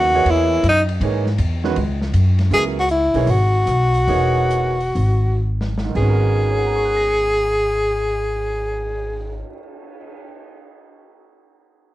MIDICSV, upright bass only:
0, 0, Header, 1, 2, 480
1, 0, Start_track
1, 0, Key_signature, 5, "minor"
1, 0, Tempo, 376648
1, 1291, Time_signature, 4, 2, 24, 8
1, 4176, Tempo, 401875
1, 5136, Tempo, 439883
1, 6096, Tempo, 499168
1, 7056, Tempo, 539084
1, 12389, End_track
2, 0, Start_track
2, 0, Title_t, "Upright bass"
2, 0, Program_c, 0, 32
2, 0, Note_on_c, 0, 39, 93
2, 313, Note_off_c, 0, 39, 0
2, 321, Note_on_c, 0, 40, 82
2, 792, Note_off_c, 0, 40, 0
2, 806, Note_on_c, 0, 42, 86
2, 1273, Note_off_c, 0, 42, 0
2, 1282, Note_on_c, 0, 44, 91
2, 1750, Note_off_c, 0, 44, 0
2, 1766, Note_on_c, 0, 40, 88
2, 2231, Note_off_c, 0, 40, 0
2, 2249, Note_on_c, 0, 37, 82
2, 2712, Note_off_c, 0, 37, 0
2, 2723, Note_on_c, 0, 42, 88
2, 3189, Note_off_c, 0, 42, 0
2, 3197, Note_on_c, 0, 37, 83
2, 3956, Note_off_c, 0, 37, 0
2, 4003, Note_on_c, 0, 35, 64
2, 4157, Note_off_c, 0, 35, 0
2, 4165, Note_on_c, 0, 32, 82
2, 4609, Note_off_c, 0, 32, 0
2, 4633, Note_on_c, 0, 35, 73
2, 5095, Note_off_c, 0, 35, 0
2, 5130, Note_on_c, 0, 28, 77
2, 6050, Note_off_c, 0, 28, 0
2, 6087, Note_on_c, 0, 32, 82
2, 7014, Note_off_c, 0, 32, 0
2, 7048, Note_on_c, 0, 32, 81
2, 10128, Note_off_c, 0, 32, 0
2, 12389, End_track
0, 0, End_of_file